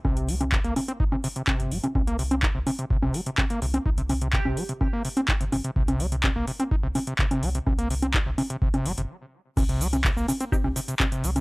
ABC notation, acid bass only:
X:1
M:4/4
L:1/16
Q:1/4=126
K:Cm
V:1 name="Acid bass" clef=bass
C,2 G, C, C, B, C, C E C, C, C, C,2 G, C, | C, B, C, C E C, C, C, C, C, G, C, C, B, C, C | E C, C, C, C, C, G, C, C, B, C, C E C, C, C, | C, C, G, C, C, B, C, C E C, C, C, C, C, G, C, |
C, B, C, C E C, C, C, C, C, G, C, z4 | C, C, G, C, C, B, C, C E C, C, C, C, C, G, C, |]